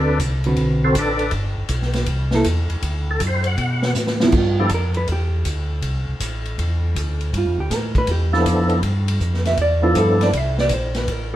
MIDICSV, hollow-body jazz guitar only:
0, 0, Header, 1, 2, 480
1, 0, Start_track
1, 0, Tempo, 375469
1, 1699, Time_signature, 4, 2, 24, 8
1, 14519, End_track
2, 0, Start_track
2, 0, Title_t, "Hollow-body jazz guitar"
2, 0, Program_c, 0, 26
2, 0, Note_on_c, 0, 50, 64
2, 0, Note_on_c, 0, 60, 66
2, 0, Note_on_c, 0, 66, 65
2, 0, Note_on_c, 0, 71, 68
2, 229, Note_off_c, 0, 50, 0
2, 232, Note_off_c, 0, 60, 0
2, 233, Note_off_c, 0, 66, 0
2, 238, Note_off_c, 0, 71, 0
2, 588, Note_on_c, 0, 50, 62
2, 592, Note_on_c, 0, 60, 60
2, 596, Note_on_c, 0, 66, 69
2, 597, Note_on_c, 0, 71, 69
2, 1193, Note_off_c, 0, 50, 0
2, 1195, Note_off_c, 0, 60, 0
2, 1197, Note_off_c, 0, 66, 0
2, 1198, Note_off_c, 0, 71, 0
2, 2992, Note_on_c, 0, 58, 71
2, 2997, Note_on_c, 0, 64, 73
2, 3007, Note_on_c, 0, 69, 78
2, 3131, Note_off_c, 0, 58, 0
2, 3134, Note_off_c, 0, 64, 0
2, 3139, Note_off_c, 0, 69, 0
2, 5401, Note_on_c, 0, 53, 80
2, 5412, Note_on_c, 0, 59, 72
2, 5416, Note_on_c, 0, 64, 70
2, 5535, Note_off_c, 0, 53, 0
2, 5541, Note_off_c, 0, 59, 0
2, 5542, Note_off_c, 0, 64, 0
2, 5592, Note_on_c, 0, 65, 64
2, 5871, Note_off_c, 0, 65, 0
2, 5887, Note_on_c, 0, 67, 81
2, 6030, Note_off_c, 0, 67, 0
2, 6066, Note_on_c, 0, 70, 82
2, 6347, Note_off_c, 0, 70, 0
2, 6355, Note_on_c, 0, 71, 83
2, 6503, Note_off_c, 0, 71, 0
2, 6548, Note_on_c, 0, 67, 75
2, 6970, Note_off_c, 0, 67, 0
2, 9432, Note_on_c, 0, 65, 70
2, 9711, Note_off_c, 0, 65, 0
2, 9720, Note_on_c, 0, 67, 82
2, 9902, Note_off_c, 0, 67, 0
2, 9902, Note_on_c, 0, 70, 84
2, 10186, Note_off_c, 0, 70, 0
2, 10203, Note_on_c, 0, 71, 97
2, 10349, Note_off_c, 0, 71, 0
2, 10372, Note_on_c, 0, 67, 79
2, 10802, Note_off_c, 0, 67, 0
2, 12107, Note_on_c, 0, 76, 85
2, 12261, Note_off_c, 0, 76, 0
2, 12293, Note_on_c, 0, 74, 89
2, 12579, Note_on_c, 0, 65, 47
2, 12582, Note_off_c, 0, 74, 0
2, 12737, Note_off_c, 0, 65, 0
2, 12766, Note_on_c, 0, 69, 71
2, 13059, Note_off_c, 0, 69, 0
2, 13079, Note_on_c, 0, 74, 82
2, 13263, Note_off_c, 0, 74, 0
2, 13263, Note_on_c, 0, 76, 85
2, 13548, Note_off_c, 0, 76, 0
2, 13558, Note_on_c, 0, 74, 88
2, 13707, Note_off_c, 0, 74, 0
2, 13729, Note_on_c, 0, 72, 78
2, 14020, Note_off_c, 0, 72, 0
2, 14028, Note_on_c, 0, 71, 71
2, 14210, Note_off_c, 0, 71, 0
2, 14210, Note_on_c, 0, 70, 78
2, 14489, Note_off_c, 0, 70, 0
2, 14519, End_track
0, 0, End_of_file